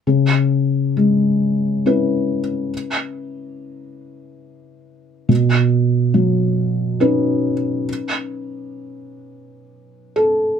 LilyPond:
\new Staff \with { instrumentName = "Felt piano" } { \time 3/4 \key cis \minor \tempo 4 = 69 << { r2. | r2. | r2. | r2 r8 a'8 | } \\ { cis4 gis4 <cis' e' b'>4~ | <cis' e' b'>2. | b,4 fis4 <cis' dis' b'>4~ | <cis' dis' b'>2. | } >> }